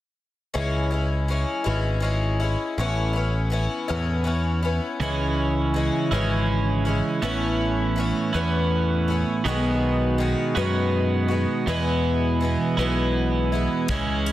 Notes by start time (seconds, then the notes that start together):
0.54 C#2 C#3 E3 G#3 C#4 E4
0.91 G#3 C#4 E4
1.28 E3 G#3 C#4 E4
1.64 G#1 C#3 E3 G#3 C#4 E4
2.00 E3 G#3 C#4 E4
2.40 G#3 C#4 E4
2.78 A1 A2 E3 B3 C#4 E4
3.13 C#4 E4
3.18 B3
3.50 E3 B3 C#4 E4
3.88 E2 A2 E3 B3 C#4 E4
4.24 E3 B3 C#4 E4
4.63 B3 C#4 E4
5.00 C#2 C#3 E3 G#3 C#4 E4
5.74 E3 G#3 C#4 E4
6.11 G#1 C#3 E3 G#3 C#4 E4
6.85 G#3 C#4 E4
7.22 A1 A2 E3 B3 C#4 E4
7.96 E3 B3 C#4
8.00 E4
8.34 E2 A2 E3 B3 C#4 E4
9.08 B3 C#4 E4
9.45 B1 B2 D#3 G#3 B3 F#4
10.18 D#3 G#3 B3 F#4
10.56 F#2 B2 D#3 G#3 B3 F#4
11.28 G#3 B3 F#4
11.67 E2 B2 E3 G#3 B3 E4
12.41 E3 G#3 B3
12.45 E4
12.78 B1 E2 B2 E3 G#3 B3 E4
13.52 E3 G#3 B3 E4
13.88 C#2 C#3 E3 G#3 C#4 E4, kick, closed hi-hat
14.26 closed hi-hat